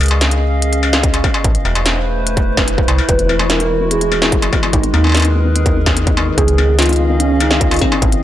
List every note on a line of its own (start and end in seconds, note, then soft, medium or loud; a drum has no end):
0.00 1.28 C#2 loud
0.00 1.43 C#4 medium
0.00 1.41 G#4 medium
0.00 1.43 D#5 medium
0.00 1.43 F5 medium
0.00 closed hi-hat soft
0.00 struck metal medium
0.03 closed hi-hat soft
0.06 closed hi-hat soft
0.08 closed hi-hat soft
0.08 struck metal medium
0.21 snare loud
0.21 closed hi-hat medium
0.31 closed hi-hat medium
0.62 closed hi-hat medium
0.73 closed hi-hat medium
0.83 struck metal medium
0.93 snare loud
1.03 kick loud
1.03 closed hi-hat medium
1.14 closed hi-hat medium
1.14 struck metal medium
1.24 kick loud
1.24 struck metal medium
1.34 struck metal medium
1.44 1.57 A1 medium
1.44 3.07 A3 medium
1.44 4.70 E4 medium
1.44 3.07 B4 medium
1.44 3.07 C5 medium
1.44 kick loud
1.44 closed hi-hat medium
1.55 closed hi-hat soft
1.65 2.88 E1 loud
1.65 struck metal medium
1.75 closed hi-hat soft
1.75 struck metal medium
1.86 snare loud
1.86 closed hi-hat medium
2.27 closed hi-hat medium
2.37 kick loud
2.37 closed hi-hat medium
2.57 kick loud
2.57 snare loud
2.57 struck metal medium
2.68 closed hi-hat medium
2.78 kick loud
2.88 3.01 C2 loud
2.88 closed hi-hat soft
2.88 struck metal medium
2.98 struck metal medium
3.09 4.56 E1 medium
3.09 3.15 E3 medium
3.09 6.35 G#3 medium
3.09 4.72 F#4 medium
3.09 3.47 B4 loud
3.09 kick loud
3.09 closed hi-hat medium
3.19 3.25 E3 medium
3.19 closed hi-hat soft
3.29 3.35 E3 medium
3.29 struck metal medium
3.39 3.46 E3 medium
3.39 struck metal medium
3.50 3.58 E3 loud
3.50 3.88 A#4 loud
3.50 snare loud
3.50 closed hi-hat medium
3.60 3.66 E3 medium
3.60 closed hi-hat soft
3.70 3.76 E3 medium
3.81 3.87 E3 medium
3.91 3.97 E3 medium
3.91 4.49 G#4 loud
3.91 closed hi-hat medium
4.01 4.07 E3 medium
4.01 closed hi-hat soft
4.12 4.18 E3 medium
4.12 struck metal medium
4.22 4.31 E3 loud
4.22 snare loud
4.32 kick loud
4.32 closed hi-hat medium
4.42 4.48 E3 medium
4.42 closed hi-hat soft
4.42 struck metal medium
4.53 4.59 E3 medium
4.53 kick loud
4.53 struck metal medium
4.63 4.69 E3 medium
4.63 struck metal medium
4.73 4.86 G#1 loud
4.73 4.79 D#3 medium
4.73 5.51 D#4 medium
4.73 6.36 G#4 medium
4.73 6.36 A#4 medium
4.73 6.36 B4 medium
4.73 kick loud
4.73 closed hi-hat medium
4.83 4.90 D#3 medium
4.83 closed hi-hat soft
4.94 6.31 D#2 loud
4.94 5.03 D#3 medium
4.94 struck metal medium
5.04 5.10 D#3 medium
5.04 struck metal soft
5.07 struck metal soft
5.09 struck metal medium
5.12 5.20 D#3 medium
5.12 snare loud
5.12 closed hi-hat medium
5.12 struck metal medium
5.15 closed hi-hat medium
5.15 struck metal medium
5.17 closed hi-hat soft
5.17 struck metal medium
5.20 closed hi-hat soft
5.20 struck metal medium
5.22 5.31 D#3 medium
5.22 closed hi-hat soft
5.22 struck metal medium
5.35 5.41 D#3 medium
5.45 5.51 D#3 medium
5.55 5.61 D#3 medium
5.55 closed hi-hat medium
5.66 5.75 D#3 medium
5.66 kick loud
5.66 closed hi-hat soft
5.76 5.82 D#3 medium
5.86 5.92 D#3 medium
5.86 kick medium
5.86 snare loud
5.86 struck metal medium
5.97 6.03 D#3 medium
5.97 closed hi-hat medium
6.07 6.13 D#3 medium
6.07 kick loud
6.07 closed hi-hat soft
6.17 6.23 D#3 medium
6.17 struck metal medium
6.28 6.33 D#3 medium
6.38 7.85 C#2 loud
6.38 6.47 D#3 medium
6.38 8.00 C#4 medium
6.38 8.00 G#4 medium
6.38 6.76 G#4 loud
6.38 8.01 D#5 medium
6.38 8.00 F5 medium
6.38 kick loud
6.38 closed hi-hat medium
6.48 6.54 D#3 medium
6.48 closed hi-hat medium
6.58 6.64 D#3 medium
6.58 struck metal medium
6.69 6.74 D#3 medium
6.79 6.85 D#3 medium
6.79 7.17 F4 loud
6.79 snare loud
6.79 closed hi-hat medium
6.82 closed hi-hat medium
6.86 6.95 D#3 medium
6.86 closed hi-hat soft
6.89 closed hi-hat soft
6.93 closed hi-hat soft
6.96 7.05 D#3 medium
6.96 closed hi-hat soft
7.10 7.18 D#3 medium
7.20 7.26 D#3 medium
7.20 7.42 C#4 loud
7.20 closed hi-hat medium
7.30 7.36 D#3 medium
7.40 7.46 D#3 medium
7.40 7.63 D#4 medium
7.40 closed hi-hat soft
7.40 struck metal medium
7.51 7.57 D#3 medium
7.51 snare loud
7.61 7.67 D#3 medium
7.61 7.81 F4 loud
7.61 kick loud
7.61 closed hi-hat medium
7.71 7.77 D#3 medium
7.71 closed hi-hat soft
7.71 struck metal medium
7.74 closed hi-hat soft
7.76 closed hi-hat soft
7.79 7.90 D#3 medium
7.79 7.90 C4 medium
7.79 kick medium
7.79 closed hi-hat soft
7.79 struck metal medium
7.89 7.98 D#3 medium
7.89 7.97 C#4 medium
7.89 struck metal medium
7.96 8.23 C4 loud
8.02 8.14 A1 medium
8.02 8.08 E3 medium
8.02 8.23 A3 medium
8.02 8.23 A4 medium
8.02 8.23 B4 medium
8.02 8.23 C5 medium
8.02 kick loud
8.02 closed hi-hat medium
8.12 8.18 E3 medium
8.12 closed hi-hat medium